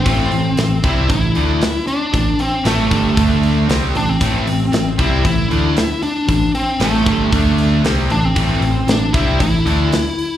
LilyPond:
<<
  \new Staff \with { instrumentName = "Lead electric guitar" } { \time 4/4 \key a \minor \tempo 4 = 116 c'4. e'8 e'4. d'8~ | d'8 c'8 a2 r8 d'16 c'16~ | c'4. e'8 e'4. d'8~ | d'8 c'8 a2 r8 d'16 c'16~ |
c'4 d'8 e'8 e'2 | }
  \new Staff \with { instrumentName = "Distorted electric guitar" } { \clef bass \time 4/4 \key a \minor <a, e a>8 <a, e>8 <a, e>8 <c g c'>8 <a, e>8 <d a d'>8 r4 | <a, e>8 r8 <a, e a>8 <g, d g>8 <d a d'>4 <c g c'>8 <a, e>8 | <a, e a>8 <a, e>8 <a, e>8 <c g c'>8 <a, e>8 <d a d'>8 r4 | <a, e>8 r8 <a, e a>8 <g, d g>8 <d a d'>4 <c g c'>8 <a, e>8 |
<a, e a>8 <a, e>8 <a, e>8 <c g c'>8 <a, e>8 <d a d'>8 r4 | }
  \new Staff \with { instrumentName = "Overdriven electric guitar" } { \clef bass \time 4/4 \key a \minor <a, e a>8 <a, e>8 <a, e>8 <c g c'>8 <a, e>8 <d a d'>8 r4 | <a, e>8 r8 <a, e a>8 <g, d g>8 <d a d'>4 <c g c'>8 <a, e>8 | <a, e a>8 <a, e>8 <a, e>8 <c g c'>8 <a, e>8 <d a d'>8 r4 | <a, e>8 r8 <a, e a>8 <g, d g>8 <d a d'>4 <c g c'>8 <a, e>8 |
<a, e a>8 <a, e>8 <a, e>8 <c g c'>8 <a, e>8 <d a d'>8 r4 | }
  \new Staff \with { instrumentName = "Overdriven electric guitar" } { \clef bass \time 4/4 \key a \minor <a, e a>8 <a, e>8 <a, e>8 <c g c'>8 <a, e>8 <d a d'>8 r4 | <a, e>8 r8 <a, e a>8 <g, d g>8 <d a d'>4 <c g c'>8 <a, e>8 | <a, e a>8 <a, e>8 <a, e>8 <c g c'>8 <a, e>8 <d a d'>8 r4 | <a, e>8 r8 <a, e a>8 <g, d g>8 <d a d'>4 <c g c'>8 <a, e>8 |
<a, e a>8 <a, e>8 <a, e>8 <c g c'>8 <a, e>8 <d a d'>8 r4 | }
  \new Staff \with { instrumentName = "Picked electric bass" } { \clef bass \time 4/4 \key a \minor a,,8 a,,8 a,,8 c,8 a,,8 d,8 r4 | a,,8 r8 a,,8 g,,8 d,4 c,8 a,,8 | a,,8 a,,8 a,,8 c,8 a,,8 d,8 r4 | a,,8 r8 a,,8 g,,8 d,4 c,8 a,,8 |
a,,8 a,,8 a,,8 c,8 a,,8 d,8 r4 | }
  \new DrumStaff \with { instrumentName = "Drums" } \drummode { \time 4/4 <hho bd>8 hho8 <hho sn>8 <hho bd>8 <hho bd>8 hho8 <hho sn>8 hho8 | <hho bd>8 hho8 <hho sn>8 <hho bd>8 <hho bd>8 hho8 <hho sn>8 hho8 | <hho bd>8 hho8 <hho sn>8 <hho bd>8 <hho bd>8 hho8 <hho sn>8 hho8 | <hho bd>8 hho8 <hho sn>8 <hho bd>8 <hho bd>8 hho8 <hho sn>8 hho8 |
<hho bd>8 hho8 <hho sn>8 <hho bd>8 <hho bd>8 hho8 <hho sn>8 hho8 | }
>>